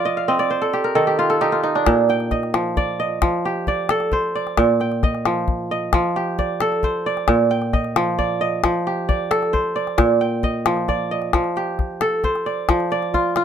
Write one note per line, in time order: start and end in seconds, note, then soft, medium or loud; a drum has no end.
0.00 0.54 F3 medium
0.00 1.18 F4 medium
0.00 0.17 A#4 medium
0.00 0.50 C5 medium
0.00 0.34 D5 medium
0.00 0.17 F5 medium
0.05 0.28 D#5 medium
0.17 1.17 F5 medium
0.28 2.08 C4 medium
0.28 1.35 D#5 medium
0.39 1.01 D5 medium
0.50 1.69 C5 medium
0.62 0.90 A4 medium
0.73 1.07 G4 medium
0.84 1.36 A#4 medium
0.95 1.91 D#3 medium
0.95 1.29 A4 medium
1.07 1.41 G4 medium
1.19 1.52 F4 medium
1.30 1.92 A4 medium
1.41 1.63 D#4 medium
1.41 2.82 G4 medium
1.52 3.04 F4 medium
1.63 2.83 D#4 medium
1.75 2.38 D4 medium
1.86 3.27 A#2 medium
1.86 calabash thump medium
1.86 calabash click medium
2.09 3.03 G5 medium
2.09 calabash click soft
2.20 calabash click soft
2.31 2.99 D#5 medium
2.31 calabash thump medium
2.31 calabash click soft
2.43 calabash click soft
2.54 3.20 F3 medium
2.54 calabash click medium
2.77 3.67 D5 medium
2.77 calabash thump medium
3.00 3.74 D#5 medium
3.22 4.63 F3 medium
3.22 calabash thump medium
3.22 calabash click medium
3.45 4.87 G4 medium
3.67 4.35 D5 medium
3.67 calabash thump medium
3.89 4.64 A4 medium
3.89 calabash click medium
4.00 calabash click soft
4.12 5.31 C5 medium
4.12 calabash thump medium
4.35 5.10 D5 medium
4.47 calabash click soft
4.58 5.99 A#2 medium
4.58 calabash thump medium
4.58 calabash click medium
4.80 5.74 G5 medium
4.80 calabash click soft
4.92 calabash click soft
5.03 5.71 D#5 medium
5.03 calabash thump medium
5.03 calabash click soft
5.15 calabash click soft
5.26 5.93 F3 medium
5.26 calabash click medium
5.48 calabash thump medium
5.71 6.45 D#5 medium
5.93 7.34 F3 medium
5.93 calabash thump medium
5.93 calabash click medium
6.16 7.57 G4 medium
6.39 7.06 D5 medium
6.39 calabash thump medium
6.61 7.34 A4 medium
6.61 calabash click medium
6.72 calabash click soft
6.83 8.03 C5 medium
6.83 calabash thump medium
7.06 7.79 D5 medium
7.17 calabash click soft
7.28 8.69 A#2 medium
7.28 calabash thump medium
7.28 calabash click medium
7.51 8.44 G5 medium
7.62 calabash click soft
7.73 8.40 D#5 medium
7.73 calabash thump medium
7.73 calabash click soft
7.84 calabash click soft
7.96 8.63 F3 medium
7.96 calabash click medium
8.19 9.08 D5 medium
8.19 calabash thump medium
8.41 9.15 D#5 medium
8.64 10.04 F3 medium
8.64 calabash thump medium
8.64 calabash click medium
8.87 10.28 G4 medium
9.09 9.75 D5 medium
9.09 calabash thump medium
9.31 10.04 A4 medium
9.31 calabash click medium
9.43 calabash click soft
9.53 10.72 C5 medium
9.53 calabash thump medium
9.76 10.50 D5 medium
9.87 calabash click soft
9.98 11.39 A#2 medium
9.98 calabash thump medium
9.98 calabash click medium
10.21 11.14 G5 medium
10.43 11.11 D#5 medium
10.43 calabash thump medium
10.66 11.33 F3 medium
10.66 calabash click medium
10.77 calabash click soft
10.88 11.99 D5 medium
10.88 calabash thump medium
10.88 calabash click soft
11.11 12.18 D#5 medium
11.22 calabash click soft
11.33 12.68 F3 medium
11.33 calabash thump medium
11.33 calabash click medium
11.44 calabash click soft
11.56 12.98 G4 medium
11.56 calabash click soft
11.79 calabash thump medium
11.79 calabash click soft
12.01 13.33 A4 medium
12.01 calabash click medium
12.24 13.43 C5 medium
12.24 calabash thump medium
12.24 calabash click soft
12.36 calabash click soft
12.46 12.91 D5 medium
12.46 calabash click soft
12.69 13.44 F3 medium
12.69 calabash thump medium
12.69 calabash click medium
12.80 calabash click soft
12.91 13.44 D5 medium
12.91 calabash click soft
13.03 calabash click soft
13.14 13.36 F4 medium
13.14 calabash thump medium
13.36 13.44 F4 medium
13.36 calabash click medium